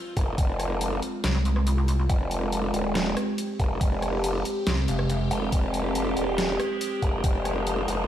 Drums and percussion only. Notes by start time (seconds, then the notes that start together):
0.17 kick, closed hi-hat
0.38 kick, closed hi-hat
0.60 cross-stick, closed hi-hat
0.81 closed hi-hat
1.02 closed hi-hat
1.24 snare, closed hi-hat
1.45 closed hi-hat
1.56 cross-stick
1.67 closed hi-hat
1.88 closed hi-hat
2.10 kick, closed hi-hat
2.31 closed hi-hat
2.52 closed hi-hat
2.74 closed hi-hat
2.95 snare, closed hi-hat
3.17 cross-stick, closed hi-hat
3.38 closed hi-hat
3.60 kick, closed hi-hat
3.81 kick, closed hi-hat
4.02 cross-stick, closed hi-hat
4.24 closed hi-hat
4.45 closed hi-hat
4.67 snare, closed hi-hat
4.88 closed hi-hat
4.99 cross-stick
5.10 closed hi-hat
5.31 closed hi-hat
5.52 kick, closed hi-hat
5.74 closed hi-hat
5.95 closed hi-hat
6.17 closed hi-hat
6.38 snare, closed hi-hat
6.60 cross-stick, closed hi-hat
6.81 closed hi-hat
7.02 kick, closed hi-hat
7.24 kick, closed hi-hat
7.45 cross-stick, closed hi-hat
7.67 closed hi-hat
7.88 closed hi-hat